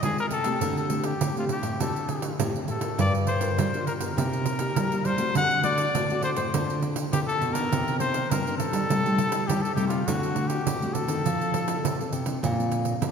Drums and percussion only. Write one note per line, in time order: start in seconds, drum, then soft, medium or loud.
0.03 pandeiro medium
0.18 pandeiro soft
0.30 pandeiro medium
0.44 pandeiro medium
0.61 pandeiro medium
0.77 pandeiro soft
0.90 pandeiro medium
1.04 pandeiro medium
1.21 pandeiro medium
1.37 pandeiro soft
1.49 pandeiro medium
1.63 pandeiro medium
1.80 pandeiro medium
1.96 pandeiro soft
2.09 pandeiro medium
2.22 pandeiro medium
2.40 pandeiro medium
2.56 pandeiro soft
2.68 pandeiro soft
2.81 pandeiro medium
2.99 pandeiro medium
3.15 pandeiro soft
3.27 pandeiro medium
3.41 pandeiro medium
3.59 pandeiro medium
3.74 pandeiro soft
3.87 pandeiro medium
4.00 pandeiro medium
4.18 pandeiro medium
4.33 pandeiro soft
4.46 pandeiro medium
4.59 pandeiro medium
4.76 pandeiro medium
4.92 pandeiro soft
5.05 pandeiro soft
5.18 pandeiro medium
5.35 pandeiro medium
5.51 pandeiro soft
5.63 pandeiro medium
5.78 pandeiro medium
5.95 pandeiro medium
6.10 pandeiro soft
6.22 pandeiro medium
6.36 pandeiro medium
6.54 pandeiro medium
6.70 pandeiro soft
6.82 pandeiro medium
6.96 pandeiro medium
7.13 pandeiro medium
7.29 pandeiro soft
7.42 pandeiro soft
7.55 pandeiro medium
7.72 pandeiro medium
7.88 pandeiro soft
8.00 pandeiro medium
8.14 pandeiro medium
8.31 pandeiro medium
8.47 pandeiro soft
8.60 pandeiro medium
8.73 pandeiro medium
8.90 pandeiro medium
9.06 pandeiro soft
9.18 pandeiro medium
9.32 pandeiro medium
9.49 pandeiro medium
9.65 pandeiro soft
9.77 pandeiro medium
9.90 pandeiro medium
10.08 pandeiro medium
10.23 pandeiro soft
10.36 pandeiro medium
10.50 pandeiro medium
10.67 pandeiro medium
10.82 pandeiro soft
10.95 pandeiro medium
11.08 pandeiro medium
11.26 pandeiro medium
11.41 pandeiro soft
11.54 pandeiro medium
11.68 pandeiro medium
11.85 pandeiro medium
12.01 pandeiro soft
12.13 pandeiro medium
12.26 pandeiro medium
12.44 pandeiro medium
12.60 pandeiro soft
12.72 pandeiro medium
12.85 pandeiro medium
13.02 pandeiro medium